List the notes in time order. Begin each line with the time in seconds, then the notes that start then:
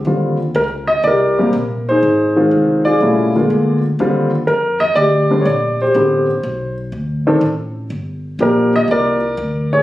0.05 D#2 D3 G3 C4 F4
0.55 C#2 A#4
0.87 D#5
1.03 C2 D5
1.07 G4 A#4
1.38 C3 G3 A#3 G4
1.53 A#1
1.89 D#4 G#4 C5
2.03 G#1
2.36 D#3 G#3 C4 F4
2.51 C2
2.85 F4 G#4 D5
3.01 A#1 C#3 G3 A3 E4
3.36 D3 G#3 A#3 F4
3.50 D2
3.99 D#2 D3 G3 C4 F4
4.47 F2 A#4
4.80 D#5
4.95 D2 G4 D5
5.31 D3 G3 C4 D4
5.41 C#5
5.45 A#1 D5
5.82 G4 C5
5.94 A1 D3 B3 C4 G4
6.43 B1
6.92 D2
7.27 D#3 C4 D4 A4
7.41 A1
7.90 G1
8.39 A#1 F3 A#3 D4 G4 A#4
8.76 D#5
8.88 C2 D5
8.92 A#4
9.37 D2
9.73 G#4 C#5